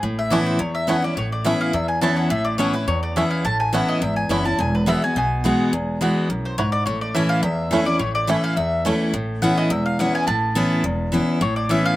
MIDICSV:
0, 0, Header, 1, 5, 480
1, 0, Start_track
1, 0, Key_signature, 3, "major"
1, 0, Tempo, 284630
1, 51, Time_signature, 4, 2, 24, 8
1, 20174, End_track
2, 0, Start_track
2, 0, Title_t, "Mandolin"
2, 0, Program_c, 0, 25
2, 316, Note_on_c, 0, 76, 87
2, 532, Note_off_c, 0, 76, 0
2, 532, Note_on_c, 0, 74, 78
2, 774, Note_off_c, 0, 74, 0
2, 784, Note_on_c, 0, 72, 80
2, 1006, Note_off_c, 0, 72, 0
2, 1012, Note_on_c, 0, 73, 72
2, 1254, Note_off_c, 0, 73, 0
2, 1259, Note_on_c, 0, 76, 92
2, 1483, Note_off_c, 0, 76, 0
2, 1497, Note_on_c, 0, 78, 90
2, 1737, Note_off_c, 0, 78, 0
2, 1758, Note_on_c, 0, 74, 86
2, 1973, Note_off_c, 0, 74, 0
2, 1986, Note_on_c, 0, 73, 69
2, 2221, Note_off_c, 0, 73, 0
2, 2233, Note_on_c, 0, 74, 78
2, 2450, Note_on_c, 0, 76, 77
2, 2451, Note_off_c, 0, 74, 0
2, 2694, Note_off_c, 0, 76, 0
2, 2712, Note_on_c, 0, 77, 89
2, 2930, Note_off_c, 0, 77, 0
2, 2939, Note_on_c, 0, 76, 78
2, 3169, Note_off_c, 0, 76, 0
2, 3176, Note_on_c, 0, 80, 79
2, 3394, Note_off_c, 0, 80, 0
2, 3401, Note_on_c, 0, 81, 90
2, 3645, Note_off_c, 0, 81, 0
2, 3652, Note_on_c, 0, 78, 82
2, 3880, Note_off_c, 0, 78, 0
2, 3890, Note_on_c, 0, 76, 80
2, 4124, Note_on_c, 0, 74, 88
2, 4134, Note_off_c, 0, 76, 0
2, 4346, Note_off_c, 0, 74, 0
2, 4352, Note_on_c, 0, 73, 86
2, 4605, Note_off_c, 0, 73, 0
2, 4624, Note_on_c, 0, 71, 91
2, 4844, Note_off_c, 0, 71, 0
2, 4851, Note_on_c, 0, 73, 73
2, 5094, Note_off_c, 0, 73, 0
2, 5106, Note_on_c, 0, 74, 79
2, 5328, Note_off_c, 0, 74, 0
2, 5339, Note_on_c, 0, 76, 84
2, 5567, Note_off_c, 0, 76, 0
2, 5574, Note_on_c, 0, 77, 85
2, 5802, Note_off_c, 0, 77, 0
2, 5818, Note_on_c, 0, 81, 93
2, 6058, Note_off_c, 0, 81, 0
2, 6069, Note_on_c, 0, 80, 84
2, 6289, Note_off_c, 0, 80, 0
2, 6310, Note_on_c, 0, 78, 80
2, 6544, Note_off_c, 0, 78, 0
2, 6553, Note_on_c, 0, 75, 87
2, 6771, Note_off_c, 0, 75, 0
2, 6795, Note_on_c, 0, 76, 74
2, 7014, Note_off_c, 0, 76, 0
2, 7021, Note_on_c, 0, 80, 83
2, 7245, Note_off_c, 0, 80, 0
2, 7269, Note_on_c, 0, 83, 100
2, 7504, Note_off_c, 0, 83, 0
2, 7512, Note_on_c, 0, 81, 90
2, 7731, Note_off_c, 0, 81, 0
2, 7760, Note_on_c, 0, 80, 87
2, 7990, Note_off_c, 0, 80, 0
2, 8006, Note_on_c, 0, 71, 73
2, 8218, Note_off_c, 0, 71, 0
2, 8244, Note_on_c, 0, 76, 92
2, 8472, Note_off_c, 0, 76, 0
2, 8495, Note_on_c, 0, 80, 97
2, 8703, Note_off_c, 0, 80, 0
2, 8731, Note_on_c, 0, 80, 82
2, 10084, Note_off_c, 0, 80, 0
2, 10883, Note_on_c, 0, 72, 77
2, 11091, Note_off_c, 0, 72, 0
2, 11098, Note_on_c, 0, 73, 91
2, 11328, Note_off_c, 0, 73, 0
2, 11335, Note_on_c, 0, 74, 96
2, 11556, Note_off_c, 0, 74, 0
2, 11563, Note_on_c, 0, 73, 81
2, 11810, Note_off_c, 0, 73, 0
2, 11828, Note_on_c, 0, 74, 90
2, 12048, Note_off_c, 0, 74, 0
2, 12049, Note_on_c, 0, 76, 83
2, 12289, Note_off_c, 0, 76, 0
2, 12295, Note_on_c, 0, 77, 102
2, 12517, Note_off_c, 0, 77, 0
2, 12524, Note_on_c, 0, 76, 73
2, 13206, Note_off_c, 0, 76, 0
2, 13259, Note_on_c, 0, 74, 95
2, 13479, Note_off_c, 0, 74, 0
2, 13485, Note_on_c, 0, 73, 70
2, 13731, Note_off_c, 0, 73, 0
2, 13742, Note_on_c, 0, 74, 97
2, 13965, Note_off_c, 0, 74, 0
2, 13983, Note_on_c, 0, 76, 76
2, 14220, Note_off_c, 0, 76, 0
2, 14228, Note_on_c, 0, 77, 104
2, 14436, Note_off_c, 0, 77, 0
2, 14442, Note_on_c, 0, 76, 71
2, 14893, Note_off_c, 0, 76, 0
2, 15887, Note_on_c, 0, 78, 70
2, 16131, Note_off_c, 0, 78, 0
2, 16147, Note_on_c, 0, 75, 93
2, 16366, Note_off_c, 0, 75, 0
2, 16383, Note_on_c, 0, 76, 65
2, 16616, Note_off_c, 0, 76, 0
2, 16623, Note_on_c, 0, 77, 87
2, 16844, Note_off_c, 0, 77, 0
2, 16862, Note_on_c, 0, 78, 92
2, 17098, Note_off_c, 0, 78, 0
2, 17116, Note_on_c, 0, 80, 85
2, 17311, Note_off_c, 0, 80, 0
2, 17318, Note_on_c, 0, 81, 84
2, 18695, Note_off_c, 0, 81, 0
2, 19259, Note_on_c, 0, 73, 82
2, 19491, Note_off_c, 0, 73, 0
2, 19498, Note_on_c, 0, 74, 92
2, 19720, Note_off_c, 0, 74, 0
2, 19737, Note_on_c, 0, 76, 87
2, 19974, Note_off_c, 0, 76, 0
2, 19993, Note_on_c, 0, 77, 118
2, 20174, Note_off_c, 0, 77, 0
2, 20174, End_track
3, 0, Start_track
3, 0, Title_t, "Five-string banjo"
3, 0, Program_c, 1, 105
3, 542, Note_on_c, 1, 57, 65
3, 552, Note_on_c, 1, 61, 65
3, 557, Note_on_c, 1, 64, 66
3, 647, Note_off_c, 1, 57, 0
3, 652, Note_off_c, 1, 61, 0
3, 653, Note_off_c, 1, 64, 0
3, 1500, Note_on_c, 1, 57, 62
3, 1515, Note_on_c, 1, 64, 67
3, 1516, Note_on_c, 1, 61, 61
3, 1607, Note_off_c, 1, 57, 0
3, 1610, Note_off_c, 1, 61, 0
3, 1613, Note_off_c, 1, 64, 0
3, 2459, Note_on_c, 1, 57, 67
3, 2466, Note_on_c, 1, 61, 68
3, 2474, Note_on_c, 1, 64, 66
3, 2566, Note_off_c, 1, 57, 0
3, 2569, Note_off_c, 1, 61, 0
3, 2571, Note_off_c, 1, 64, 0
3, 3414, Note_on_c, 1, 57, 64
3, 3423, Note_on_c, 1, 61, 65
3, 3431, Note_on_c, 1, 64, 65
3, 3523, Note_off_c, 1, 57, 0
3, 3527, Note_off_c, 1, 61, 0
3, 3532, Note_off_c, 1, 64, 0
3, 4374, Note_on_c, 1, 57, 63
3, 4382, Note_on_c, 1, 61, 66
3, 4390, Note_on_c, 1, 64, 63
3, 4483, Note_off_c, 1, 57, 0
3, 4488, Note_off_c, 1, 61, 0
3, 4490, Note_off_c, 1, 64, 0
3, 5345, Note_on_c, 1, 57, 65
3, 5353, Note_on_c, 1, 61, 62
3, 5354, Note_on_c, 1, 64, 63
3, 5449, Note_off_c, 1, 57, 0
3, 5452, Note_off_c, 1, 61, 0
3, 5454, Note_off_c, 1, 64, 0
3, 6301, Note_on_c, 1, 57, 64
3, 6309, Note_on_c, 1, 61, 68
3, 6316, Note_on_c, 1, 64, 70
3, 6408, Note_off_c, 1, 57, 0
3, 6410, Note_off_c, 1, 61, 0
3, 6415, Note_off_c, 1, 64, 0
3, 7270, Note_on_c, 1, 57, 60
3, 7277, Note_on_c, 1, 61, 65
3, 7278, Note_on_c, 1, 64, 63
3, 7372, Note_off_c, 1, 57, 0
3, 7374, Note_off_c, 1, 61, 0
3, 7376, Note_off_c, 1, 64, 0
3, 8223, Note_on_c, 1, 59, 64
3, 8230, Note_on_c, 1, 64, 70
3, 8263, Note_off_c, 1, 64, 0
3, 8328, Note_off_c, 1, 59, 0
3, 9194, Note_on_c, 1, 59, 65
3, 9199, Note_on_c, 1, 64, 64
3, 9233, Note_off_c, 1, 64, 0
3, 9294, Note_off_c, 1, 59, 0
3, 10153, Note_on_c, 1, 59, 66
3, 10155, Note_on_c, 1, 64, 61
3, 10189, Note_off_c, 1, 64, 0
3, 10253, Note_off_c, 1, 59, 0
3, 11114, Note_on_c, 1, 59, 65
3, 11121, Note_on_c, 1, 64, 70
3, 11155, Note_off_c, 1, 64, 0
3, 11214, Note_off_c, 1, 59, 0
3, 12063, Note_on_c, 1, 57, 62
3, 12065, Note_on_c, 1, 61, 65
3, 12075, Note_on_c, 1, 64, 63
3, 12168, Note_off_c, 1, 57, 0
3, 12168, Note_off_c, 1, 61, 0
3, 12174, Note_off_c, 1, 64, 0
3, 13028, Note_on_c, 1, 57, 67
3, 13032, Note_on_c, 1, 61, 64
3, 13038, Note_on_c, 1, 64, 68
3, 13131, Note_off_c, 1, 57, 0
3, 13131, Note_off_c, 1, 61, 0
3, 13135, Note_off_c, 1, 64, 0
3, 13983, Note_on_c, 1, 57, 63
3, 13991, Note_on_c, 1, 61, 64
3, 13991, Note_on_c, 1, 64, 70
3, 14088, Note_off_c, 1, 57, 0
3, 14091, Note_off_c, 1, 61, 0
3, 14091, Note_off_c, 1, 64, 0
3, 14940, Note_on_c, 1, 57, 68
3, 14948, Note_on_c, 1, 61, 64
3, 14957, Note_on_c, 1, 64, 58
3, 15046, Note_off_c, 1, 57, 0
3, 15049, Note_off_c, 1, 61, 0
3, 15054, Note_off_c, 1, 64, 0
3, 20174, End_track
4, 0, Start_track
4, 0, Title_t, "Steel-string acoustic guitar"
4, 0, Program_c, 2, 25
4, 48, Note_on_c, 2, 45, 92
4, 512, Note_on_c, 2, 52, 92
4, 528, Note_on_c, 2, 59, 100
4, 541, Note_on_c, 2, 61, 86
4, 549, Note_on_c, 2, 64, 109
4, 964, Note_off_c, 2, 45, 0
4, 979, Note_off_c, 2, 52, 0
4, 987, Note_off_c, 2, 59, 0
4, 993, Note_off_c, 2, 61, 0
4, 994, Note_on_c, 2, 40, 86
4, 997, Note_off_c, 2, 64, 0
4, 1468, Note_on_c, 2, 52, 83
4, 1479, Note_on_c, 2, 59, 90
4, 1487, Note_on_c, 2, 61, 98
4, 1503, Note_on_c, 2, 64, 98
4, 1702, Note_off_c, 2, 64, 0
4, 1720, Note_off_c, 2, 52, 0
4, 1723, Note_on_c, 2, 64, 63
4, 1725, Note_off_c, 2, 59, 0
4, 1729, Note_off_c, 2, 61, 0
4, 1753, Note_on_c, 2, 61, 42
4, 1917, Note_off_c, 2, 40, 0
4, 1953, Note_off_c, 2, 64, 0
4, 1968, Note_off_c, 2, 61, 0
4, 1972, Note_on_c, 2, 45, 86
4, 2437, Note_on_c, 2, 52, 98
4, 2446, Note_on_c, 2, 59, 93
4, 2461, Note_on_c, 2, 61, 94
4, 2469, Note_on_c, 2, 64, 108
4, 2886, Note_off_c, 2, 45, 0
4, 2901, Note_off_c, 2, 52, 0
4, 2906, Note_off_c, 2, 59, 0
4, 2914, Note_off_c, 2, 61, 0
4, 2917, Note_off_c, 2, 64, 0
4, 2923, Note_on_c, 2, 40, 84
4, 3396, Note_on_c, 2, 52, 94
4, 3410, Note_on_c, 2, 59, 91
4, 3422, Note_on_c, 2, 61, 105
4, 3427, Note_on_c, 2, 64, 98
4, 3842, Note_off_c, 2, 40, 0
4, 3862, Note_off_c, 2, 52, 0
4, 3868, Note_off_c, 2, 59, 0
4, 3874, Note_off_c, 2, 61, 0
4, 3877, Note_off_c, 2, 64, 0
4, 3882, Note_on_c, 2, 45, 97
4, 4351, Note_on_c, 2, 52, 91
4, 4363, Note_on_c, 2, 59, 83
4, 4371, Note_on_c, 2, 61, 99
4, 4387, Note_on_c, 2, 64, 99
4, 4591, Note_off_c, 2, 64, 0
4, 4602, Note_off_c, 2, 52, 0
4, 4608, Note_off_c, 2, 59, 0
4, 4612, Note_off_c, 2, 61, 0
4, 4612, Note_on_c, 2, 64, 67
4, 4643, Note_on_c, 2, 61, 54
4, 4802, Note_off_c, 2, 45, 0
4, 4838, Note_off_c, 2, 64, 0
4, 4851, Note_on_c, 2, 40, 87
4, 4854, Note_off_c, 2, 61, 0
4, 5328, Note_on_c, 2, 52, 85
4, 5342, Note_on_c, 2, 59, 86
4, 5354, Note_on_c, 2, 61, 85
4, 5362, Note_on_c, 2, 64, 91
4, 5766, Note_off_c, 2, 40, 0
4, 5788, Note_off_c, 2, 52, 0
4, 5794, Note_off_c, 2, 59, 0
4, 5801, Note_off_c, 2, 61, 0
4, 5804, Note_off_c, 2, 64, 0
4, 5811, Note_on_c, 2, 45, 83
4, 6284, Note_on_c, 2, 52, 91
4, 6293, Note_on_c, 2, 59, 94
4, 6308, Note_on_c, 2, 61, 94
4, 6316, Note_on_c, 2, 64, 99
4, 6726, Note_off_c, 2, 45, 0
4, 6745, Note_off_c, 2, 52, 0
4, 6750, Note_off_c, 2, 59, 0
4, 6758, Note_off_c, 2, 61, 0
4, 6762, Note_off_c, 2, 64, 0
4, 6773, Note_on_c, 2, 40, 88
4, 7239, Note_on_c, 2, 52, 81
4, 7249, Note_on_c, 2, 59, 93
4, 7258, Note_on_c, 2, 61, 93
4, 7265, Note_on_c, 2, 64, 93
4, 7474, Note_off_c, 2, 64, 0
4, 7486, Note_off_c, 2, 52, 0
4, 7491, Note_off_c, 2, 59, 0
4, 7494, Note_on_c, 2, 64, 53
4, 7496, Note_off_c, 2, 61, 0
4, 7525, Note_on_c, 2, 61, 49
4, 7687, Note_off_c, 2, 40, 0
4, 7719, Note_off_c, 2, 64, 0
4, 7733, Note_on_c, 2, 40, 87
4, 7735, Note_off_c, 2, 61, 0
4, 8199, Note_on_c, 2, 52, 84
4, 8214, Note_on_c, 2, 56, 96
4, 8226, Note_on_c, 2, 59, 94
4, 8235, Note_on_c, 2, 66, 98
4, 8447, Note_off_c, 2, 52, 0
4, 8448, Note_off_c, 2, 66, 0
4, 8454, Note_off_c, 2, 56, 0
4, 8460, Note_off_c, 2, 59, 0
4, 8468, Note_on_c, 2, 66, 59
4, 8505, Note_on_c, 2, 59, 47
4, 8647, Note_off_c, 2, 40, 0
4, 8686, Note_off_c, 2, 66, 0
4, 8703, Note_on_c, 2, 47, 83
4, 8705, Note_off_c, 2, 59, 0
4, 9172, Note_on_c, 2, 52, 85
4, 9186, Note_on_c, 2, 56, 86
4, 9198, Note_on_c, 2, 59, 104
4, 9207, Note_on_c, 2, 66, 92
4, 9612, Note_off_c, 2, 47, 0
4, 9630, Note_off_c, 2, 52, 0
4, 9637, Note_off_c, 2, 56, 0
4, 9642, Note_off_c, 2, 59, 0
4, 9647, Note_off_c, 2, 66, 0
4, 9661, Note_on_c, 2, 40, 92
4, 10131, Note_on_c, 2, 52, 84
4, 10139, Note_on_c, 2, 56, 89
4, 10153, Note_on_c, 2, 59, 97
4, 10159, Note_on_c, 2, 66, 99
4, 10571, Note_off_c, 2, 40, 0
4, 10589, Note_off_c, 2, 52, 0
4, 10593, Note_off_c, 2, 56, 0
4, 10600, Note_off_c, 2, 59, 0
4, 10603, Note_off_c, 2, 66, 0
4, 10621, Note_on_c, 2, 42, 87
4, 11074, Note_off_c, 2, 42, 0
4, 11095, Note_on_c, 2, 44, 85
4, 11551, Note_off_c, 2, 44, 0
4, 11579, Note_on_c, 2, 45, 92
4, 12051, Note_on_c, 2, 52, 88
4, 12070, Note_on_c, 2, 57, 103
4, 12081, Note_on_c, 2, 61, 96
4, 12083, Note_on_c, 2, 64, 113
4, 12490, Note_off_c, 2, 45, 0
4, 12509, Note_off_c, 2, 52, 0
4, 12518, Note_off_c, 2, 57, 0
4, 12523, Note_off_c, 2, 61, 0
4, 12524, Note_on_c, 2, 40, 94
4, 12525, Note_off_c, 2, 64, 0
4, 12997, Note_on_c, 2, 52, 93
4, 13014, Note_on_c, 2, 57, 78
4, 13026, Note_on_c, 2, 61, 93
4, 13031, Note_on_c, 2, 64, 88
4, 13220, Note_off_c, 2, 64, 0
4, 13240, Note_on_c, 2, 64, 61
4, 13244, Note_off_c, 2, 52, 0
4, 13253, Note_off_c, 2, 57, 0
4, 13259, Note_off_c, 2, 61, 0
4, 13278, Note_on_c, 2, 61, 50
4, 13442, Note_off_c, 2, 40, 0
4, 13472, Note_off_c, 2, 64, 0
4, 13480, Note_on_c, 2, 45, 91
4, 13491, Note_off_c, 2, 61, 0
4, 13954, Note_on_c, 2, 52, 95
4, 13962, Note_on_c, 2, 57, 99
4, 13974, Note_on_c, 2, 61, 98
4, 13987, Note_on_c, 2, 64, 98
4, 14399, Note_off_c, 2, 45, 0
4, 14419, Note_off_c, 2, 52, 0
4, 14424, Note_off_c, 2, 57, 0
4, 14430, Note_off_c, 2, 61, 0
4, 14436, Note_off_c, 2, 64, 0
4, 14453, Note_on_c, 2, 40, 88
4, 14922, Note_on_c, 2, 52, 93
4, 14938, Note_on_c, 2, 57, 90
4, 14948, Note_on_c, 2, 61, 91
4, 14954, Note_on_c, 2, 64, 99
4, 15365, Note_off_c, 2, 40, 0
4, 15383, Note_off_c, 2, 52, 0
4, 15391, Note_off_c, 2, 57, 0
4, 15396, Note_off_c, 2, 61, 0
4, 15399, Note_off_c, 2, 64, 0
4, 15406, Note_on_c, 2, 45, 94
4, 15884, Note_on_c, 2, 52, 93
4, 15897, Note_on_c, 2, 59, 89
4, 15901, Note_on_c, 2, 61, 95
4, 15914, Note_on_c, 2, 64, 109
4, 16322, Note_off_c, 2, 45, 0
4, 16344, Note_off_c, 2, 52, 0
4, 16350, Note_off_c, 2, 59, 0
4, 16352, Note_off_c, 2, 61, 0
4, 16359, Note_off_c, 2, 64, 0
4, 16360, Note_on_c, 2, 40, 96
4, 16847, Note_on_c, 2, 52, 83
4, 16864, Note_on_c, 2, 59, 90
4, 16873, Note_on_c, 2, 61, 91
4, 16882, Note_on_c, 2, 64, 97
4, 17278, Note_off_c, 2, 40, 0
4, 17305, Note_off_c, 2, 52, 0
4, 17313, Note_off_c, 2, 59, 0
4, 17318, Note_off_c, 2, 61, 0
4, 17322, Note_off_c, 2, 64, 0
4, 17328, Note_on_c, 2, 45, 98
4, 17797, Note_on_c, 2, 52, 103
4, 17808, Note_on_c, 2, 59, 104
4, 17817, Note_on_c, 2, 61, 99
4, 17834, Note_on_c, 2, 64, 95
4, 18242, Note_off_c, 2, 45, 0
4, 18259, Note_off_c, 2, 52, 0
4, 18265, Note_off_c, 2, 59, 0
4, 18269, Note_off_c, 2, 61, 0
4, 18278, Note_off_c, 2, 64, 0
4, 18279, Note_on_c, 2, 40, 95
4, 18750, Note_on_c, 2, 52, 84
4, 18767, Note_on_c, 2, 59, 82
4, 18775, Note_on_c, 2, 61, 92
4, 18785, Note_on_c, 2, 64, 100
4, 19197, Note_off_c, 2, 40, 0
4, 19215, Note_off_c, 2, 52, 0
4, 19224, Note_off_c, 2, 59, 0
4, 19228, Note_off_c, 2, 61, 0
4, 19233, Note_off_c, 2, 64, 0
4, 19241, Note_on_c, 2, 45, 92
4, 19718, Note_on_c, 2, 52, 93
4, 19727, Note_on_c, 2, 59, 93
4, 19744, Note_on_c, 2, 61, 100
4, 19748, Note_on_c, 2, 64, 105
4, 20158, Note_off_c, 2, 45, 0
4, 20174, Note_off_c, 2, 52, 0
4, 20174, Note_off_c, 2, 59, 0
4, 20174, Note_off_c, 2, 61, 0
4, 20174, Note_off_c, 2, 64, 0
4, 20174, End_track
5, 0, Start_track
5, 0, Title_t, "Upright bass"
5, 0, Program_c, 3, 32
5, 47, Note_on_c, 3, 33, 82
5, 624, Note_off_c, 3, 33, 0
5, 1008, Note_on_c, 3, 40, 71
5, 1586, Note_off_c, 3, 40, 0
5, 1966, Note_on_c, 3, 33, 88
5, 2544, Note_off_c, 3, 33, 0
5, 2923, Note_on_c, 3, 40, 83
5, 3502, Note_off_c, 3, 40, 0
5, 3886, Note_on_c, 3, 33, 92
5, 4464, Note_off_c, 3, 33, 0
5, 4844, Note_on_c, 3, 40, 86
5, 5423, Note_off_c, 3, 40, 0
5, 5807, Note_on_c, 3, 33, 97
5, 6385, Note_off_c, 3, 33, 0
5, 6761, Note_on_c, 3, 32, 77
5, 7174, Note_off_c, 3, 32, 0
5, 7239, Note_on_c, 3, 30, 80
5, 7653, Note_off_c, 3, 30, 0
5, 7728, Note_on_c, 3, 28, 91
5, 8306, Note_off_c, 3, 28, 0
5, 8692, Note_on_c, 3, 35, 79
5, 9268, Note_off_c, 3, 35, 0
5, 9654, Note_on_c, 3, 28, 83
5, 10230, Note_off_c, 3, 28, 0
5, 10613, Note_on_c, 3, 35, 78
5, 11189, Note_off_c, 3, 35, 0
5, 11565, Note_on_c, 3, 33, 85
5, 12143, Note_off_c, 3, 33, 0
5, 12520, Note_on_c, 3, 40, 78
5, 13099, Note_off_c, 3, 40, 0
5, 13483, Note_on_c, 3, 33, 90
5, 14061, Note_off_c, 3, 33, 0
5, 14442, Note_on_c, 3, 40, 80
5, 15021, Note_off_c, 3, 40, 0
5, 15405, Note_on_c, 3, 33, 86
5, 15982, Note_off_c, 3, 33, 0
5, 16366, Note_on_c, 3, 28, 84
5, 16943, Note_off_c, 3, 28, 0
5, 17325, Note_on_c, 3, 33, 91
5, 17902, Note_off_c, 3, 33, 0
5, 18271, Note_on_c, 3, 28, 90
5, 18851, Note_off_c, 3, 28, 0
5, 19240, Note_on_c, 3, 33, 84
5, 19818, Note_off_c, 3, 33, 0
5, 20174, End_track
0, 0, End_of_file